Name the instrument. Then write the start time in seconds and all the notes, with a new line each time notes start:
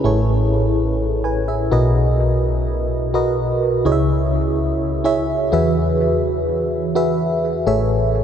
fm electric piano
0.04 A1 A2 E4 G#4 A4 C#5
1.24 B4 G#5
1.48 G#4 E5
1.71 B1 B2 F#4 A#4 B4 D#5
3.14 F#4 A#4 B4 D#5
3.85 C#2 C#3 E4 G#4 C#5 D#5
3.92 E5
5.04 E4 G#4 C#5 E5
5.52 E2 E3 F#4 G#4 B4 E5
6.95 F#4 G#4 B4 E5
7.67 A1 A2 G#4 A4 C#5 E5